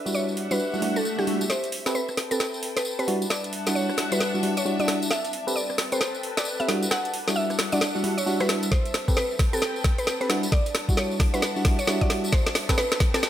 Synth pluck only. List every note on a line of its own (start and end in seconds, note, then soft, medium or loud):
0.14 0.33 C#5 medium
0.51 0.74 B4 medium
0.96 1.05 A4 medium
1.19 1.35 G4 medium
1.50 1.74 C5 medium
1.95 2.14 B4 medium
2.31 2.55 A4 medium
2.77 2.86 B4 medium
2.99 3.16 B4 medium
3.30 3.54 D5 loud
3.75 3.94 C#5 medium
4.12 4.35 B4 medium
4.57 4.66 C#5 medium
4.80 4.96 D5 loud
5.11 5.34 E5 loud
5.56 5.75 D5 medium
5.92 6.16 C5 medium
6.37 6.47 D5 medium
6.60 6.76 E5 loud
6.91 7.15 F#5 loud
7.36 7.55 E5 medium
7.72 7.96 D5 medium
8.18 8.27 C#5 medium
8.41 8.57 B4 loud
8.72 8.95 C5 loud
9.17 9.36 B4 medium
9.53 9.77 A4 medium
9.98 10.08 B4 medium
10.21 10.37 B4 loud
10.52 10.76 D5 loud
10.97 11.16 C#5 medium
11.34 11.57 B4 medium
11.79 11.88 C#5 medium
12.01 12.18 D5 loud
12.33 12.56 C5 loud
12.78 12.97 B4 medium
13.14 13.30 A4 loud